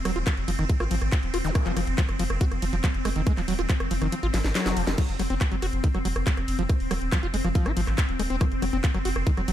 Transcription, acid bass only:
0.05 0.11 F#3 medium
0.16 0.18 F4 loud
0.27 0.31 F3 medium
0.48 0.50 F3 medium
0.59 0.65 D#3 medium
0.69 0.72 F3 medium
0.80 0.84 F4 medium
0.91 0.95 F3 medium
1.34 1.38 F4 loud
1.44 1.50 D#3 medium
1.66 1.72 F3 medium
1.77 1.81 F3 medium
1.98 2.02 F3 medium
2.19 2.23 F3 loud
2.41 2.45 F#4 medium
2.62 2.65 F3 medium
2.73 2.75 F3 medium
2.84 2.88 F3 medium
3.05 3.09 G#3 medium
3.16 3.22 D#3 medium
3.27 3.32 G#3 loud
3.37 3.41 F3 medium
3.48 3.54 F#3 medium
3.59 3.61 F4 loud
3.70 3.73 F3 medium
3.91 3.93 F3 medium
4.02 4.07 D#3 medium
4.12 4.15 F3 medium
4.23 4.27 F4 medium
4.34 4.38 F3 medium
4.55 4.78 F#3 medium
4.77 4.82 F3 medium
4.87 4.90 F#3 loud
4.98 5.02 F3 loud
5.20 5.22 F#3 loud
5.30 5.34 C4 loud
5.41 5.43 F3 medium
5.52 5.56 F#3 medium
5.62 5.66 F#4 medium
5.84 5.88 D#3 medium
5.95 5.98 F#3 medium
6.05 6.08 F#3 loud
6.27 6.30 F3 medium
6.59 6.63 F3 loud
6.91 6.93 F#3 loud
7.12 7.18 F3 loud
7.23 7.27 F4 medium
7.34 7.36 G#3 loud
7.44 7.48 F3 loud
7.55 7.67 F3 medium
7.66 7.72 F4 medium
7.77 7.81 F3 loud
8.19 8.22 G#3 loud
8.30 8.36 C4 medium
8.41 8.45 F3 loud
8.62 8.65 F#3 loud
8.73 8.77 C4 loud
8.84 8.86 F3 medium
8.95 8.98 F#3 medium
9.05 9.09 F#4 medium
9.27 9.31 D#3 medium
9.37 9.41 F#3 medium
9.48 9.50 F#3 loud

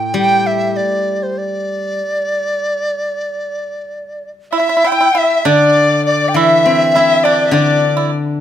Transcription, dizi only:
0.00 0.16 G5 medium
0.18 0.48 G5 medium
0.46 0.78 E5 medium
0.76 1.24 D5 medium
1.23 1.39 C5 medium
1.38 4.30 D5 medium
4.55 4.89 E5 medium
4.88 5.19 G5 medium
5.18 5.48 E5 medium
5.47 6.05 D5 medium
6.06 6.30 D5 medium
6.28 6.37 G5 medium
6.35 7.25 E5 medium
7.24 7.52 D5 medium
7.53 8.07 D5 medium

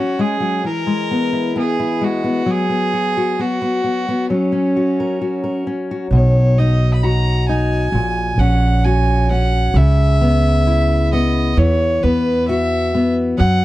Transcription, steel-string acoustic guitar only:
0.00 0.19 F#3 soft
0.00 0.60 C#4 soft
0.19 0.40 G#3 soft
0.40 0.64 F#3 soft
0.64 2.41 E3 soft
0.87 2.00 G#3 soft
1.11 1.54 B3 soft
1.33 1.78 E4 soft
1.56 2.23 B3 soft
1.79 2.42 E4 soft
2.01 2.41 G#3 soft
2.24 2.68 B3 soft
2.46 4.28 F#3 soft
2.69 3.38 B3 soft
2.93 3.16 F#4 soft
3.17 4.24 F#4 soft
3.39 3.60 B3 soft
3.62 3.83 B3 soft
3.84 4.06 B3 soft
4.08 4.30 B3 soft
4.30 9.75 F#3 soft
4.52 5.66 C#4 soft
4.76 5.20 F#4 soft
5.00 5.42 A#4 soft
5.21 5.89 F#4 soft
5.44 6.06 A#4 soft
5.67 6.06 C#4 soft
5.91 6.07 F#4 soft
6.13 7.88 B2 medium
6.60 7.48 D#4 soft
7.04 7.88 F#4 medium
7.49 7.88 D#4 soft
7.95 9.70 A#2 medium
8.40 9.29 C#4 soft
8.85 9.70 F#4 soft
9.30 9.70 C#4 soft
9.76 11.57 C#3 medium
10.21 11.12 B3 medium
10.67 11.52 E4 soft
11.13 12.02 B3 medium
11.57 13.34 E3 medium
12.03 12.93 B3 medium
12.49 13.34 F#4 soft
12.95 13.39 B3 soft
13.38 13.65 F#3 medium

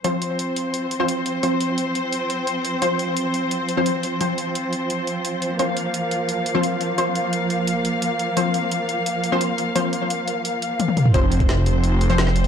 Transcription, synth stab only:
0.04 0.98 F3 medium
0.04 0.98 C4 medium
0.04 0.98 C5 medium
1.00 1.10 F3 medium
1.00 1.10 C4 medium
1.00 1.10 C5 loud
1.43 1.59 F3 medium
1.43 1.59 C4 medium
1.43 1.59 C5 medium
2.82 3.75 F3 medium
2.82 3.75 C4 medium
2.82 3.75 C5 medium
3.77 3.87 F3 medium
3.77 3.87 C4 medium
3.77 3.87 C5 loud
4.21 4.37 F3 medium
4.21 4.37 C4 medium
4.21 4.37 C5 medium
5.59 6.53 F3 medium
5.59 6.53 C4 medium
5.59 6.53 C5 medium
6.55 6.65 F3 medium
6.55 6.65 C4 medium
6.55 6.65 C5 loud
6.98 7.14 F3 medium
6.98 7.14 C4 medium
6.98 7.14 C5 medium
8.37 9.30 F3 medium
8.37 9.30 C4 medium
8.37 9.30 C5 medium
9.32 9.42 F3 medium
9.32 9.42 C4 medium
9.32 9.42 C5 loud
9.75 9.92 F3 medium
9.75 9.92 C4 medium
9.75 9.92 C5 medium
11.14 12.08 F3 medium
11.14 12.08 C4 medium
11.14 12.08 C5 medium
12.10 12.20 F3 medium
12.10 12.20 C4 medium
12.10 12.20 C5 loud

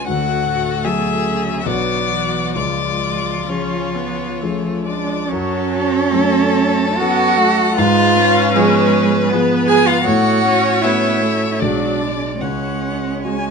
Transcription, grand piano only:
0.00 0.11 G#3 soft
0.00 0.11 C#4 soft
0.00 0.10 B4 soft
0.08 0.83 D2 medium
0.84 1.62 F#3 soft
0.84 1.62 F#4 soft
0.84 1.62 A4 soft
1.66 2.53 B1 medium
1.66 2.52 F#3 soft
1.66 2.52 F#4 soft
1.66 2.52 B4 soft
2.56 3.46 C#2 medium
3.49 4.37 F3 soft
3.49 4.37 C#4 soft
3.49 4.37 G#4 soft
4.42 5.27 F3 soft
4.42 5.27 C#4 soft
4.42 5.27 G#4 soft
5.32 6.10 F#2 medium
6.12 6.94 F#3 medium
6.12 6.94 C#4 medium
6.12 6.95 A4 medium
6.99 7.74 F#3 medium
6.99 7.74 C#4 medium
6.99 7.75 A4 medium
7.78 8.52 G#2 medium
8.55 9.27 F3 medium
8.55 9.27 B3 medium
8.55 9.27 G#4 medium
9.32 10.02 F3 medium
9.32 10.02 B3 medium
9.32 10.03 G#4 medium
10.07 10.81 A2 medium
10.84 11.57 A3 soft
10.84 11.57 C#4 medium
10.84 11.57 F#4 medium
11.61 12.39 B1 medium
11.61 12.37 G#3 soft
11.61 12.37 D4 soft
11.61 12.38 G#4 soft
12.41 13.20 C#2 soft
13.24 13.51 G#3 soft
13.24 13.51 F#4 soft
13.24 13.51 G#4 soft

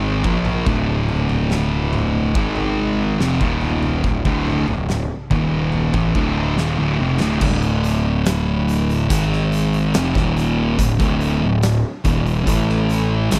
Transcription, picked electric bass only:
0.00 0.21 G#1 medium
0.25 0.64 A#1 medium
0.67 2.32 D1 medium
2.35 3.16 G#1 medium
3.20 3.40 F1 medium
3.41 4.00 D#1 medium
4.04 4.24 D1 medium
4.25 4.65 D1 medium
4.69 5.08 D1 medium
5.31 5.90 D#1 loud
5.94 6.14 A1 loud
6.15 6.55 D1 medium
6.58 6.77 D#1 medium
6.79 6.99 D1 medium
7.00 7.20 F1 medium
7.21 7.41 D1 medium
7.41 9.07 D1 medium
9.10 9.91 G#1 medium
9.95 10.15 F1 loud
10.15 10.75 D#1 loud
10.79 10.99 D1 medium
11.00 11.39 D1 loud
11.43 11.82 D1 medium
12.05 12.44 D#1 loud
12.47 13.28 A1 loud
13.32 13.39 G#1 loud

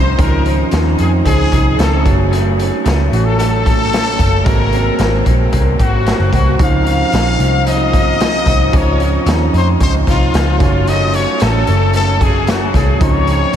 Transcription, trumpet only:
0.00 0.20 C5 loud
0.21 0.70 A#4 medium
1.00 1.12 G#4 medium
1.26 1.82 G#4 loud
1.80 2.20 A4 medium
3.13 3.26 F#4 medium
3.25 3.38 A4 medium
3.38 4.46 A4 loud
4.44 5.25 A#4 loud
5.81 6.30 F#4 medium
6.34 6.58 F#4 medium
6.63 7.64 F5 loud
7.68 8.78 D#5 loud
8.76 9.28 C#5 medium
9.56 9.68 C5 medium
9.83 9.94 C5 loud
10.09 10.58 F4 medium
10.63 10.90 F4 medium
10.89 11.16 D#5 loud
11.15 11.44 C#5 medium
11.42 11.95 A4 loud
11.95 12.24 A4 loud
12.23 12.51 G#4 loud
12.50 12.77 F#4 medium
12.76 13.02 G#4 medium
13.02 13.56 C#5 loud

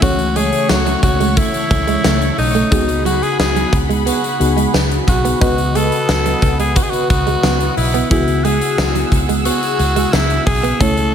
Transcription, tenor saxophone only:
0.02 0.38 F#4 loud
0.36 0.71 G#4 loud
0.69 1.03 F#4 loud
1.03 1.39 F#4 loud
1.37 2.38 E4 loud
2.38 3.02 D#4 medium
3.06 3.24 F#4 medium
3.23 3.39 G#4 medium
3.39 3.77 G#4 loud
4.08 4.71 F#4 medium
5.09 5.40 F#4 medium
5.42 5.77 F#4 loud
5.76 6.59 A4 loud
6.59 6.78 G#4 loud
6.77 6.84 F#4 medium
6.83 6.91 G#4 medium
6.90 7.09 F#4 loud
7.10 7.73 F#4 loud
7.77 8.08 E4 medium
8.11 8.46 E4 medium
8.44 9.12 G#4 medium
9.45 10.14 F#4 loud
10.13 10.45 E4 loud
10.46 10.81 G#4 loud
10.80 11.13 A4 loud

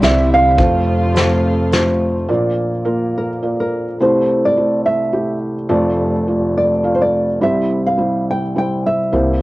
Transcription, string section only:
0.00 0.58 D3 medium
0.00 0.57 G3 medium
0.00 0.55 C4 medium
0.00 0.58 E4 medium
0.60 2.28 C3 medium
0.60 2.28 F3 medium
0.60 2.28 A3 medium
0.60 2.28 F4 medium

